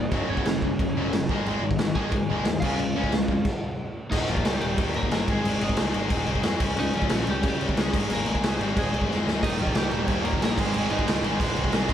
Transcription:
Already playing: D#2 A#2 D#4 D#5
0.11 F#1 F#2 C#3 F#3, kick, crash
0.29 F#1 F#2 C#3 F#3 C#4 C#5
0.37 kick
0.45 F#1 F#2 C#3, snare, crash
0.62 F#1 F#2 C#3, kick
0.79 F#1 F#2 C#3, kick, crash
0.95 F#1 F#2 C#3 F#3
1.11 F#1 F#2 C#3, snare, crash
1.29 G#1 G#2 D#3 G#3, kick
1.46 G#1 G#2 D#3 G#3, crash
1.62 G#1 G#2 D#3
1.71 kick
1.78 G#1 G#2 D#3, snare, crash
1.95 G#1 G#2 D#3 G#3 G#4 G#5, kick
2.12 G#1 G#2, kick, crash
2.16 D#3
2.30 G#1 G#2 D#3 G#3
2.45 D#2 G#2, snare, crash
2.49 D#3
2.60 C#2 C#3 F4 F5, kick, crash
2.64 G#3 C#4
2.79 C#2 C#3 G#3, crash
2.95 C#2 C#3 G#3 C#4
3.04 kick
3.12 C#2 C#3 G#3, snare, crash
3.28 F2 C#3 G#3, kick
3.45 kick, crash
4.11 D#1 D#2 A#2 D#3 D#4 D#5, kick, crash
4.28 D#1 D#2 A#2 D#3 F3 F4, crash
4.37 kick
4.44 C#2 D#2 A#2 D#3 G3 G4, snare, crash
4.61 D#1 D#2 A#2 D#3 G3 G4, crash
4.78 D#2 A#2 D#3, kick, crash
4.94 D#2 A#2 D#3 A#3 A#4, crash
5.03 kick
5.10 G1 D#2 A#2 D#3 A#3 A#4, snare, crash
5.28 G#1 G#2 D#3 G#3 G#4, kick, crash
5.43 G#1 G#2 D#3 G#3, crash
5.61 G#1 G#2 D#3 G#3 D#4 D#5, crash
5.69 kick
5.77 C#2 G#2 D#3 G#3, snare, crash
5.93 G#1 G#2 D#3 G#3, crash
6.09 D#1 G#2 D#3 G#3, kick, crash
6.26 C2 G#2 D#3 G#3, crash
6.35 kick
6.43 F2 G#2 D#3 G#3, snare, crash
6.59 C#2 C#3 G#3 C#4, kick, crash
6.76 C#2 C#3 G#3 C#4 D#4, crash
6.80 D#5
6.93 C#2 C#3 F3 G#3 C#4 F4, crash
7.02 kick
7.09 A#1 C#3 G#3 C#4, snare, crash
7.27 C#2 C#3 G3 G#3 C#4 G4, crash
7.43 C#3 G3 G#3 C#4, kick, crash
7.48 G4
7.61 C#3 G#3 C#4, crash
7.69 kick
7.77 C#2 C#3 G#3 C#4, snare, crash
7.81 G#4
7.94 G#1 G#2 D#3 G#3, kick, crash
8.09 G#1 G#2 D#3 G#3 A#3, crash
8.13 A#4
8.26 G#1 G#2 D#3 G#3, crash
8.35 kick
8.43 C#2 G#2 D#3 G#3, snare, crash
8.48 G#4
8.59 G#1 G#2 D#3 G3 G#3 G4, crash
8.76 D#1 G#2 D#3 G#3 G#4, kick, crash
8.92 C2 G#2 D#3 G#3, crash
9.01 kick
9.09 F2 G#2 D#3 G#3, snare
9.25 D2 G#2 D#3 G#3, snare
9.42 D#1 D#2 A#2 D#3 D#5, kick, crash
9.46 D#4
9.59 D#1 D#2 A#2 D#3 F3 F4, crash
9.67 kick
9.75 C#2 D#2 A#2 D#3 G3 G4, snare, crash
9.89 D#1 D#2 A#2 D#3 G3 G4, crash
10.08 D#2 A#2 D#3, kick, crash
10.24 D#2 A#2 D#3 A#3 A#4, crash
10.33 kick
10.41 A#1 D#2 A#2 D#3 A#3 A#4, snare, crash
10.57 G#1 G#2 D#3 G#3 G#4, kick, crash
10.74 G#1 G#2 D#3 G#3, crash
10.90 G#1 G#2 D#3 G#3 D#4 D#5, crash
10.99 kick
11.08 C#2 G#2 D#3 G#3, snare, crash
11.22 G#1 G#2 D#3 G#3, crash
11.40 D#1 G#2 D#3 G#3, kick, crash
11.56 C2 G#2 D#3 G#3, crash
11.64 kick
11.72 C2 G#2 D#3 G#3, snare, crash
11.89 C#2 C#3 G#3 C#4, kick, crash

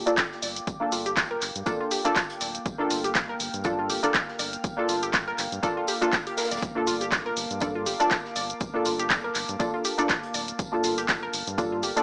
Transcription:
Already playing: A#3 F5 G5 D6
0.06 A#3 D4 F4 A4 D5, closed hi-hat, shaker
0.17 kick, snare, clap, closed hi-hat, tambourine, shaker
0.32 snare
0.42 G1 D5, open hi-hat, tambourine, shaker
0.56 closed hi-hat, shaker
0.67 G1, kick, closed hi-hat, tambourine, shaker
0.80 A#3 D4 F4 A4
0.92 G1 F4, open hi-hat, tambourine, shaker
1.06 G4, closed hi-hat, shaker
1.17 kick, snare, clap, closed hi-hat, tambourine, shaker
1.31 A#4
1.42 G1, clap, open hi-hat, tambourine, shaker
1.55 G2, closed hi-hat, shaker
1.66 A#3 D4 F4 A4 D5, kick, closed hi-hat, tambourine, shaker
1.81 F4
1.91 G4, open hi-hat, tambourine, shaker
2.05 A#3 D4 F4 A4 D5, closed hi-hat, shaker
2.16 kick, snare, clap, closed hi-hat, tambourine, shaker
2.29 closed hi-hat
2.41 D1 D5, open hi-hat, tambourine, shaker
2.55 closed hi-hat, shaker
2.66 G1 F6, kick, closed hi-hat, tambourine, shaker
2.78 A#3 D4 F4 A4
2.90 G1 F4, open hi-hat, tambourine, shaker
3.04 G4, closed hi-hat, shaker
3.15 kick, snare, clap, closed hi-hat, tambourine, shaker
3.29 A#4
3.40 G1, open hi-hat, tambourine, shaker
3.54 G2, closed hi-hat, shaker
3.64 A#3 D4 F4 A4 D5, kick, closed hi-hat, tambourine, shaker
3.79 F4
3.89 G1 G4, open hi-hat, tambourine, shaker
4.03 A#3 D4 F4 A4 D5, closed hi-hat, shaker
4.14 kick, snare, clap, closed hi-hat, tambourine, shaker
4.28 snare
4.39 G1 D5, open hi-hat, tambourine, shaker
4.53 closed hi-hat, shaker
4.64 G1, kick, closed hi-hat, tambourine, shaker
4.77 A#3 D4 F4 A4
4.89 G1 F4, open hi-hat, tambourine, shaker
5.03 G4, closed hi-hat, shaker
5.13 kick, snare, clap, closed hi-hat, tambourine, shaker
5.28 A#4
5.38 G1, clap, open hi-hat, tambourine, shaker
5.52 G2, closed hi-hat, shaker
5.63 A#3 D4 F4 A4 D5, kick, closed hi-hat, tambourine, shaker
5.77 F4
5.87 G4, open hi-hat, tambourine, shaker
6.01 A#3 D4 F4 A4, closed hi-hat, shaker
6.12 kick, snare, clap, closed hi-hat, tambourine, shaker
6.27 G4, closed hi-hat
6.37 A#4, snare, open hi-hat, tambourine, shaker
6.45 snare, tambourine
6.51 D1 D5, snare, closed hi-hat, tambourine, shaker
6.57 snare, tambourine
6.62 G1 A5 D6, kick, closed hi-hat, tambourine, shaker
6.75 A#3 D4 F4 A4
6.87 G1 F4, open hi-hat, tambourine, shaker
7.00 G4, closed hi-hat, shaker
7.12 kick, snare, clap, closed hi-hat, tambourine, shaker
7.26 A#4
7.37 G1, open hi-hat, tambourine, shaker
7.51 G2, closed hi-hat, shaker
7.60 A#3 D4 F4 A4 D5, kick, closed hi-hat, tambourine, shaker
7.75 F4
7.86 G1 G4, open hi-hat, tambourine, shaker
8.00 A#3 D4 F4 A4 D5, closed hi-hat, shaker
8.11 kick, snare, clap, closed hi-hat, tambourine, shaker
8.25 snare
8.36 G1 D5, open hi-hat, tambourine, shaker
8.50 closed hi-hat, shaker
8.60 G1, kick, closed hi-hat, tambourine, shaker
8.74 A#3 D4 F4 A4
8.85 G1 F4, open hi-hat, tambourine, shaker
8.99 G4, closed hi-hat, shaker
9.10 kick, snare, clap, closed hi-hat, tambourine, shaker
9.24 A#4
9.35 G1, clap, open hi-hat, tambourine, shaker
9.49 G2, closed hi-hat, shaker
9.59 A#3 D4 F4 A4 D5, kick, closed hi-hat, tambourine, shaker
9.74 F4
9.85 G4, open hi-hat, tambourine, shaker
9.98 A#3 D4 F4 A4 D5, closed hi-hat, shaker
10.09 kick, snare, clap, closed hi-hat, tambourine, shaker
10.23 closed hi-hat
10.34 D1 D5, open hi-hat, tambourine, shaker
10.48 closed hi-hat, shaker
10.59 G1 F6, kick, closed hi-hat, tambourine, shaker
10.72 A#3 D4 F4 A4
10.84 G1 F4, open hi-hat, tambourine, shaker
10.98 G4, closed hi-hat, shaker
11.09 kick, snare, clap, closed hi-hat, tambourine, shaker
11.23 A#4
11.33 G1, open hi-hat, tambourine, shaker
11.47 G2, closed hi-hat, shaker
11.58 A#3 D4 F4 A4 D5, kick, closed hi-hat, tambourine, shaker
11.72 F4
11.83 G1 G4, open hi-hat, tambourine, shaker
11.96 A#3 D4 F4 A4 D5, closed hi-hat, shaker

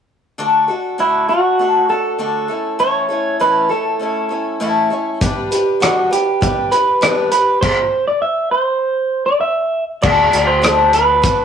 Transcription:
0.38 D3 A3 D4 F#4 A4
0.68 D4 F#4 A4
0.98 D3 A3 D4 E4 F#4 A4
1.29 D4 F#4 A4
1.59 A3 D4 F#4 A4
1.89 D4 F#4 A4
2.19 D3 A3 D4 F#4 A4
2.48 A3 C#4 E4 A4
2.79 A2 E3 A3 C#4 E4 A4 C#5
3.09 A3 C#4 E4 A4
3.40 A2 E3 A3 C#4 E4 A4 B4
3.69 A3 C#4 E4 A4
3.99 A3 C#4 E4 A4
4.29 A3 C#4 E4 A4
4.60 A2 E3 A3 C#4 E4 A4
4.90 A3 C#4 E4 A4
5.21 G3 D4 G4 B4, kick, closed hi-hat
5.51 D4 G4 B4, closed hi-hat
5.80 G3 D4 F#4 B4, cross-stick, closed hi-hat
6.11 D4 G4 B4, closed hi-hat
6.41 G3 D4 G4 B4, kick, closed hi-hat
6.71 D4 G4 B4, closed hi-hat
7.01 G3 D4 G4 B4, cross-stick, closed hi-hat
7.31 D4 G4 B4, closed hi-hat
7.61 C5, kick, crash
8.08 D5
8.22 E5
8.51 C5
9.26 D5
9.41 E5
10.02 D2 D3 A3 D4 F#4 A4 D5, kick, crash
10.32 D2 D4 F#4 A4, closed hi-hat
10.47 C5
10.62 D3 A3 D4 F#4 A4, cross-stick, closed hi-hat
10.93 D4 F#4 A4 B4, closed hi-hat
11.22 A3 D4 F#4 A4, kick, closed hi-hat

